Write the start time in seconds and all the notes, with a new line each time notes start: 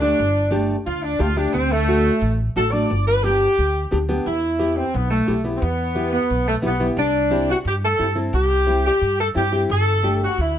Already playing: D2
0.00 A3 D4 G4
0.19 G1
0.51 A3 D4 G4
0.85 D2 F4
1.03 D4
1.19 D2 A3 D4 F4 G4
1.36 A3 D4 G4
1.53 D2 C4
1.71 A3
1.87 A3 D4 F#4
2.21 A1
2.56 A1 A3 D4 F#4 A4
2.72 A3 D4 F#4 D5
2.90 G1
3.07 B4
3.23 B3 D4 G4
3.58 D2
3.91 D2 B3 D4 G4
4.09 B3 D4 G4
4.26 E2 E4
4.59 B3 E4 G4
4.76 C4
4.94 B1 B3
5.10 A3
5.27 B1 B3 E4 G4
5.44 B3 E4 G4
5.56 C4
5.61 E2 B3
5.95 B3 E4 G4
6.12 B3
6.30 B1
6.48 A3
6.62 B1 B3 E4 G4
6.80 B3 E4 G4
6.97 C2 D4
7.30 C4 E4 G4
7.50 F#4
7.65 G2 G4
7.84 A4
7.98 G2 C4 E4 G4
8.15 C4 E4 A4
8.33 C2 G4
8.67 C4 E4 G4
8.85 G4
9.01 G2
9.20 A4
9.34 G2 C4 E4 G4
9.52 C4 E4 G4
9.69 G1 A4
10.03 A3 D4 G4
10.23 F#4
10.38 D2 E4